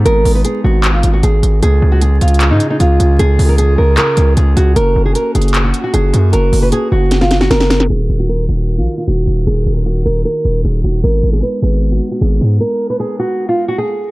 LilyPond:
<<
  \new Staff \with { instrumentName = "Nylon-string guitar" } { \time 4/4 \key ees \minor \tempo 4 = 153 bes'8. ces''16 aes'8 ges'8. f'8 ges'16 aes'4 | aes'8. ges'16 aes'8 f'8. ees'8 ees'16 f'4 | aes'8. bes'16 aes'8 bes'8 bes'4 aes'8 ges'8 | bes'8. aes'16 bes'8 aes'8. ges'8 ges'16 aes'4 |
bes'8. ces''16 aes'8 ges'8. f'8 ges'16 bes'4 | aes'8. ges'16 bes'8 ges'8. f'8 f'16 ges'4 | aes'8. bes'16 ges'8 bes'8 bes'4 aes'8 ges'8 | bes'8. aes'16 ces''8 aes'8. ges'8 ges'16 aes'4 |
bes'8. ces''16 aes'8 ges'8. f'8 ges'16 aes'4 | }
  \new Staff \with { instrumentName = "Woodwind section" } { \time 4/4 \key ees \minor <aes ces' ees'>1 | <des des' f' aes'>1~ | <des des' f' aes'>1 | <bes ges'>1~ |
<bes ges'>1 | <ees ees' ges' bes'>1~ | <ees ees' ges' bes'>1 | <aes ces'>1~ |
<aes ces'>1 | }
  \new Staff \with { instrumentName = "808-style bass" } { \clef bass \time 4/4 \key ees \minor aes,,8 aes,,8 r8 aes,,4 aes,,8 aes,,8 aes,,8 | des,8 des,4 des,8. aes,16 r8 des,8 des,8 | des,8 des,4 des,8 r8 des,8 des,8 des,8 | ges,,8 ges,,8 r8 ges,,4 r8 ges,,8 ges,8 |
ges,,8 ges,,8 r8 ges,,4. ges,,4 | ees,,8 ees,,4 ees,,8. bes,,16 r8 ees,,8 ees,,8 | ees,,8 ees,,4 ees,,8 r8 ees,,8 ees,,8 ees,,8 | aes,,8 aes,,8 r8 aes,,4 r8 aes,,8 aes,8 |
r1 | }
  \new DrumStaff \with { instrumentName = "Drums" } \drummode { \time 4/4 hh8 hho8 hh4 <hc hh>8 hh8 hh8 hh8 | hh4 \tuplet 3/2 { hh16 r16 r16 hh16 hh16 hh16 } <hc hh>8 hh8 hh8 hh8 | hh8 hho8 hh4 <hc hh>8 hh8 hh8 hh8 | hh4 \tuplet 3/2 { hh16 r16 r16 hh16 hh16 hh16 } <hc hh>8 hh8 hh8 hh8 |
hh8 hho8 hh4 <hh sn>16 sn16 <hh sn>16 sn16 <hh sn>16 sn16 <hh sn>16 sn16 | r4 r4 r4 r4 | r4 r4 r4 r4 | r4 r4 r4 r4 |
r4 r4 r4 r4 | }
>>